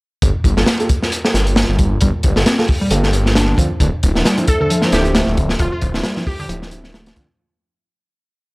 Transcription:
0.22 0.32 G1 loud
0.22 kick loud
0.22 closed hi-hat medium
0.44 0.54 G1 loud
0.44 kick medium
0.44 closed hi-hat medium
0.57 0.65 G1 medium
0.57 0.63 A#3 medium
0.57 0.63 F4 medium
0.57 0.63 G4 medium
0.57 0.63 A4 medium
0.57 snare soft
0.66 snare loud
0.66 closed hi-hat medium
0.80 0.85 A#3 medium
0.80 0.85 F4 medium
0.80 0.85 G4 medium
0.80 0.85 A4 medium
0.80 closed hi-hat soft
0.89 kick medium
0.89 closed hi-hat medium
1.03 snare soft
1.12 closed hi-hat medium
1.24 2.33 A#3 medium
1.24 2.33 F4 medium
1.24 2.33 G4 medium
1.24 2.33 A4 medium
1.24 snare soft
1.34 1.64 G1 medium
1.34 snare medium
1.34 closed hi-hat medium
1.47 closed hi-hat soft
1.56 snare loud
1.56 closed hi-hat medium
1.69 1.98 G1 medium
1.79 kick medium
1.79 closed hi-hat medium
2.01 2.11 G1 loud
2.01 2.07 G3 medium
2.01 kick loud
2.01 closed hi-hat medium
2.23 2.34 G1 loud
2.23 kick medium
2.23 closed hi-hat medium
2.36 2.44 G1 medium
2.36 2.42 A#3 medium
2.36 2.42 F4 medium
2.36 2.42 G4 medium
2.36 2.42 A4 medium
2.36 snare medium
2.46 2.58 C4 medium
2.46 snare loud
2.46 closed hi-hat medium
2.58 2.64 A#3 medium
2.58 2.63 A#3 medium
2.58 2.64 F4 medium
2.58 2.64 G4 medium
2.58 2.64 A4 medium
2.58 snare soft
2.68 kick medium
2.68 open hi-hat medium
2.81 2.89 G3 medium
2.91 3.54 G1 loud
2.91 3.56 A#3 medium
2.91 3.01 A#3 medium
2.91 3.56 F4 medium
2.91 3.56 G4 medium
2.91 3.56 A4 medium
2.91 closed hi-hat medium
3.03 3.11 A#3 medium
3.03 snare soft
3.13 closed hi-hat medium
3.26 snare soft
3.35 3.58 D4 medium
3.35 snare loud
3.35 closed hi-hat medium
3.58 3.68 D3 medium
3.58 3.65 F3 medium
3.58 3.65 C4 medium
3.58 3.65 D4 medium
3.58 3.65 F4 medium
3.58 kick medium
3.58 closed hi-hat medium
3.80 3.90 D1 loud
3.80 3.86 D3 medium
3.80 7.35 D4 medium
3.80 7.35 A4 medium
3.80 7.35 C5 medium
3.80 7.35 E5 medium
3.80 kick loud
3.80 closed hi-hat medium
4.03 4.13 D1 loud
4.03 kick medium
4.03 closed hi-hat medium
4.15 4.23 D1 medium
4.15 4.21 F3 medium
4.15 4.21 C4 medium
4.15 4.21 D4 medium
4.15 4.21 E4 medium
4.15 snare soft
4.25 4.37 G3 medium
4.25 snare loud
4.25 closed hi-hat medium
4.38 4.43 F3 medium
4.38 4.43 C4 medium
4.38 4.43 D4 medium
4.38 4.43 E4 medium
4.38 closed hi-hat soft
4.48 4.56 A4 medium
4.48 kick medium
4.48 closed hi-hat medium
4.60 4.68 D3 medium
4.60 4.67 A4 medium
4.70 4.80 F3 medium
4.70 closed hi-hat medium
4.82 5.92 F3 medium
4.82 4.90 F3 medium
4.82 5.92 C4 medium
4.82 5.92 D4 medium
4.82 5.92 E4 medium
4.82 snare soft
4.92 5.23 D1 medium
4.92 5.09 G4 medium
4.92 snare medium
4.92 closed hi-hat medium
5.05 closed hi-hat soft
5.15 5.37 A3 loud
5.15 snare loud
5.15 closed hi-hat medium
5.27 5.56 D1 medium
5.37 5.47 D3 medium
5.37 kick medium
5.37 closed hi-hat medium
5.49 snare medium
5.59 5.69 D1 loud
5.59 5.65 D3 medium
5.59 5.68 F4 medium
5.59 kick loud
5.59 closed hi-hat medium
5.72 5.79 F4 medium
5.81 5.92 D1 loud
5.81 kick medium
5.81 closed hi-hat medium
5.94 6.02 D1 medium
5.94 6.00 F3 medium
5.94 6.00 C4 medium
5.94 6.00 D4 medium
5.94 6.00 E4 medium
5.94 snare medium
6.04 6.16 G3 medium
6.04 snare loud
6.04 closed hi-hat medium
6.16 6.22 F3 medium
6.16 6.21 F3 medium
6.16 6.22 C4 medium
6.16 6.22 D4 medium
6.16 6.22 E4 loud
6.16 snare soft
6.27 6.35 G4 medium
6.27 kick medium
6.27 open hi-hat medium
6.39 6.47 D3 medium
6.39 6.46 G4 medium
6.49 7.12 D1 loud
6.49 6.70 F3 medium
6.49 6.59 F3 medium
6.49 6.70 C4 medium
6.49 6.70 D4 medium
6.49 6.70 E4 medium
6.49 closed hi-hat medium
6.62 6.69 F3 medium
6.62 snare soft
6.71 7.14 F3 medium
6.71 7.14 C4 medium
6.71 7.14 D4 medium
6.71 7.14 E4 loud
6.71 closed hi-hat medium
6.84 snare soft
6.94 7.15 A3 loud
6.94 snare medium
6.94 closed hi-hat medium
7.06 snare loud
7.06 closed hi-hat medium
7.16 7.26 D3 medium
7.16 7.23 F3 medium
7.16 7.23 C4 medium
7.16 7.23 D4 medium
7.16 7.23 F4 medium
7.16 kick medium
7.16 closed hi-hat medium

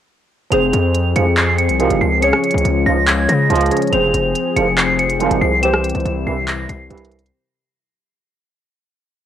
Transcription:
0.51 0.72 F1 loud
0.51 1.76 F3 medium
0.51 2.21 F3 medium
0.51 1.77 C4 medium
0.51 2.21 C4 medium
0.51 2.21 G#4 loud
0.51 1.78 G#4 medium
0.51 1.78 C5 medium
0.51 1.12 F7 loud
0.51 closed hi-hat medium
0.73 1.14 F2 loud
0.73 closed hi-hat medium
0.95 closed hi-hat medium
1.16 1.25 C2 medium
1.16 1.71 F2 loud
1.16 1.25 G#2 medium
1.16 1.25 F3 medium
1.16 1.34 C#7 medium
1.16 closed hi-hat medium
1.37 1.55 C7 medium
1.37 clap loud
1.37 closed hi-hat medium
1.58 1.98 C#7 medium
1.58 closed hi-hat medium
1.69 1.89 C2 loud
1.69 closed hi-hat medium
1.79 2.10 C2 loud
1.79 2.10 G#2 medium
1.79 2.19 F3 medium
1.79 2.10 F3 loud
1.79 2.22 C4 soft
1.79 2.21 G#4 soft
1.79 2.23 A#4 medium
1.79 closed hi-hat medium
1.90 2.00 F1 loud
1.90 closed hi-hat medium
2.01 2.32 C#2 loud
2.01 2.19 C7 medium
2.20 3.91 C#3 medium
2.20 3.67 F3 medium
2.20 3.91 G#3 medium
2.20 3.68 C#4 medium
2.20 3.91 F4 loud
2.20 3.68 G#4 medium
2.20 3.69 C#5 medium
2.20 2.82 C#7 loud
2.20 closed hi-hat medium
2.33 cross-stick loud
2.44 closed hi-hat soft
2.51 2.64 C#2 loud
2.51 closed hi-hat medium
2.58 closed hi-hat medium
2.65 2.85 C#2 loud
2.65 closed hi-hat medium
2.86 3.27 C#2 loud
2.86 2.95 C#2 medium
2.86 2.95 G#2 medium
2.86 2.95 F3 loud
2.86 3.04 A#6 medium
3.07 3.25 G#6 medium
3.07 clap loud
3.07 closed hi-hat medium
3.29 3.49 C#3 loud
3.29 3.89 A#6 medium
3.29 closed hi-hat medium
3.50 3.70 C#2 loud
3.50 3.80 C#2 medium
3.50 3.80 G#2 loud
3.50 3.80 F3 loud
3.50 closed hi-hat medium
3.55 closed hi-hat medium
3.61 closed hi-hat medium
3.66 closed hi-hat soft
3.70 3.89 F3 medium
3.70 3.92 C#4 medium
3.70 3.92 G#4 medium
3.70 3.93 C#5 medium
3.70 closed hi-hat medium
3.77 closed hi-hat medium
3.82 closed hi-hat medium
3.87 5.58 F3 medium
3.87 closed hi-hat soft
3.92 4.13 F1 loud
3.92 5.61 F3 medium
3.92 5.59 C4 medium
3.92 5.61 C4 medium
3.92 5.61 G#4 loud
3.92 5.60 G#4 medium
3.92 5.60 C5 medium
3.92 4.53 F7 loud
3.92 closed hi-hat medium
4.14 4.34 F1 loud
4.14 closed hi-hat medium
4.35 closed hi-hat medium
4.56 5.28 F1 loud
4.56 4.65 C2 medium
4.56 4.65 G#2 medium
4.56 4.65 F3 loud
4.56 4.74 C#7 medium
4.56 closed hi-hat medium
4.78 4.95 C7 medium
4.78 clap loud
4.78 closed hi-hat medium
4.99 5.39 C#7 medium
4.99 closed hi-hat medium
5.10 closed hi-hat medium
5.20 5.50 C2 medium
5.20 5.50 G#2 loud
5.20 5.50 F3 loud
5.20 closed hi-hat medium
5.31 5.41 F1 loud
5.31 closed hi-hat medium
5.41 5.92 C2 loud
5.41 5.59 C7 medium
5.61 7.31 C3 medium
5.61 7.29 E3 medium
5.61 7.31 G3 medium
5.61 7.29 C4 medium
5.61 7.31 E4 loud
5.61 7.30 G4 medium
5.61 7.31 C5 medium
5.61 6.23 E7 loud
5.61 closed hi-hat medium
5.73 cross-stick loud
5.84 closed hi-hat medium
5.89 closed hi-hat medium
5.95 6.05 C2 loud
5.95 closed hi-hat medium
6.00 closed hi-hat soft
6.05 6.26 C2 loud
6.05 closed hi-hat medium
6.27 6.36 C2 medium
6.27 6.67 C2 loud
6.27 6.36 G2 medium
6.27 6.36 E3 medium
6.27 6.44 C7 medium
6.48 6.66 A#6 medium
6.48 clap loud
6.48 closed hi-hat medium
6.69 6.90 C2 loud
6.69 7.29 C7 medium
6.69 closed hi-hat medium
6.90 7.21 C2 loud
6.90 7.31 C2 loud
6.90 7.21 G2 medium
6.90 7.21 E3 loud
6.90 closed hi-hat medium
6.98 closed hi-hat medium
7.05 closed hi-hat medium
7.11 closed hi-hat soft
7.11 open hi-hat medium
7.19 closed hi-hat medium
7.26 closed hi-hat medium

